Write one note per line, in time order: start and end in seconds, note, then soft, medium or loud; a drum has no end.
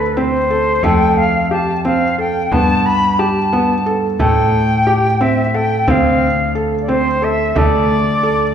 0.00 0.81 D2 medium
0.00 0.19 B4 medium
0.17 0.36 C4 medium
0.17 0.85 C5 medium
0.17 frame drum soft
0.50 0.69 A4 medium
0.83 2.48 F2 medium
0.83 1.22 A3 medium
0.83 1.19 G5 medium
0.83 frame drum medium
1.17 1.51 F5 medium
1.51 1.70 G4 medium
1.51 1.82 A5 medium
1.85 2.04 C4 medium
1.85 2.16 F5 medium
1.85 frame drum soft
2.18 2.37 A4 medium
2.18 2.54 G5 medium
2.52 4.16 G2 medium
2.52 2.90 B3 medium
2.52 2.87 A5 medium
2.52 frame drum medium
2.86 3.20 B5 medium
3.19 3.38 G4 medium
3.19 3.86 A5 medium
3.53 3.72 B3 medium
3.53 frame drum soft
3.86 4.05 A4 medium
4.19 5.84 A2 medium
4.19 4.58 A3 medium
4.19 5.23 G5 loud
4.19 frame drum medium
4.87 5.06 G4 medium
5.21 5.40 C4 medium
5.21 5.56 E5 loud
5.21 frame drum soft
5.54 5.73 A4 medium
5.54 5.91 G5 medium
5.87 7.52 D2 medium
5.87 6.26 C4 medium
5.87 6.56 F5 medium
5.87 frame drum medium
6.55 6.74 A4 medium
6.82 6.91 D5 medium
6.88 7.07 C4 medium
6.88 7.25 C5 loud
6.88 frame drum soft
7.22 7.41 A4 medium
7.22 7.59 E5 loud
7.55 8.54 D2 medium
7.55 7.94 A3 medium
7.55 8.54 D5 loud
7.55 frame drum medium
7.89 frame drum soft
8.23 8.42 A4 medium